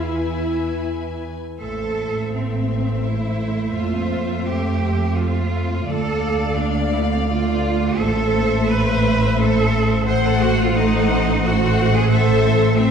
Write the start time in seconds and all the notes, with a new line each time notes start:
Already playing: E2 E4
0.00 E3 B4 E5 G#5
1.60 A1 A3 A4 C5 E5
2.34 C4
3.05 E4
3.74 F2 F4
4.46 G4
5.17 F4
5.86 D2 A3 A4 D5 F5
6.58 D4
6.92 E4
7.01 D4
7.10 C4
7.19 D4
7.28 F4
7.98 A1 A4 C5 E5
8.70 B4
9.38 A4
10.05 A1 A3 C5 F#5
10.25 A4
10.43 F#4
10.61 F4
10.74 A3 D#4 C5 F#5
11.44 A3 F#4 C5 F#5
11.96 G#4
12.11 A3 A4 C5 E5
12.75 A3 C4 C5 E5